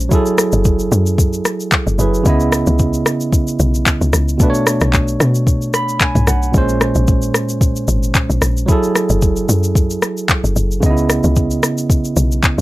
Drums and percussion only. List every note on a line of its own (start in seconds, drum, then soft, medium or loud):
0.00 shaker medium
0.11 kick loud
0.11 shaker medium
0.26 shaker medium
0.38 cross-stick loud
0.38 shaker loud
0.52 shaker medium
0.65 kick medium
0.65 shaker medium
0.79 shaker medium
0.92 shaker loud
1.06 shaker medium
1.18 kick loud
1.18 shaker medium
1.33 shaker soft
1.45 cross-stick medium
1.45 shaker medium
1.60 shaker soft
1.72 kick medium
1.72 clap medium
1.72 shaker medium
1.87 shaker medium
1.99 shaker loud
2.14 shaker medium
2.26 kick loud
2.26 shaker medium
2.40 shaker medium
2.52 cross-stick loud
2.52 shaker loud
2.67 shaker medium
2.79 kick medium
2.79 shaker medium
2.94 shaker medium
3.06 cross-stick loud
3.06 shaker loud
3.21 shaker medium
3.33 kick loud
3.33 shaker medium
3.47 shaker medium
3.59 shaker medium
3.75 shaker soft
3.86 kick medium
3.86 clap medium
3.86 shaker medium
4.02 shaker medium
4.13 cross-stick medium
4.13 shaker medium
4.29 shaker medium
4.40 kick loud
4.40 shaker medium
4.54 shaker medium
4.67 cross-stick loud
4.67 shaker loud
4.81 cross-stick medium
4.81 shaker medium
4.93 kick medium
4.93 clap medium
4.93 shaker medium
5.08 shaker medium
5.20 cross-stick loud
5.20 shaker loud
5.35 shaker medium
5.47 kick loud
5.47 shaker medium
5.62 shaker soft
5.74 cross-stick medium
5.74 shaker medium
5.89 shaker medium
6.00 kick medium
6.00 clap loud
6.00 shaker medium
6.15 mid tom medium
6.15 shaker medium
6.27 cross-stick medium
6.27 shaker loud
6.43 shaker medium
6.54 kick loud
6.54 shaker medium
6.69 shaker medium
6.81 cross-stick loud
6.81 shaker loud
6.95 shaker medium
7.08 kick medium
7.08 shaker medium
7.22 shaker medium
7.34 cross-stick loud
7.34 shaker loud
7.49 shaker medium
7.61 kick loud
7.61 shaker medium
7.76 shaker soft
7.88 shaker medium
8.03 shaker medium
8.15 kick medium
8.15 clap medium
8.15 shaker medium
8.30 shaker medium
8.42 cross-stick medium
8.42 shaker medium
8.57 shaker medium
8.69 kick loud
8.69 shaker medium
8.83 shaker medium
8.95 cross-stick loud
8.95 shaker loud
9.09 shaker medium
9.22 kick medium
9.22 shaker medium
9.36 shaker medium
9.49 shaker loud
9.64 shaker medium
9.75 kick loud
9.75 shaker medium
9.90 shaker soft
10.02 cross-stick medium
10.02 shaker medium
10.17 shaker medium
10.29 kick medium
10.29 clap medium
10.29 shaker medium
10.45 shaker medium
10.56 shaker medium
10.71 shaker medium
10.83 kick loud
10.83 shaker medium
10.97 shaker medium
11.10 cross-stick loud
11.10 shaker medium
11.24 shaker medium
11.36 kick medium
11.36 shaker medium
11.51 shaker medium
11.63 cross-stick loud
11.63 shaker loud
11.78 shaker medium
11.90 kick loud
11.90 shaker medium
12.05 shaker medium
12.17 shaker medium
12.32 shaker medium
12.43 kick medium
12.43 clap medium
12.43 shaker medium